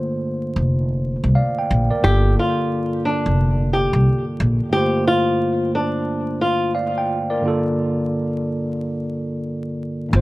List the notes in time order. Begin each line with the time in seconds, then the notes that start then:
Already playing: G2 D3 A3 A#3 F4 C5
0.56 F1
1.24 C2
1.35 D5 F5
1.59 G5
1.71 A#1
1.91 A#4 D5
2.01 G1 G2 D3 A#3 G4
2.06 F4 A4
2.39 F4
3.05 D4
3.26 F1
3.73 G4
3.93 C2
4.40 A#1
4.70 G2 D3 A3 G4
4.75 F4 C5
4.80 A#3
5.07 F4
5.75 D4
6.41 F4
6.75 D5 F5
6.98 G5
7.30 A#4 D5
7.40 G2 D3 A#3
7.46 F4 A4
10.09 G2 D3 A3
10.13 G1 F4 C5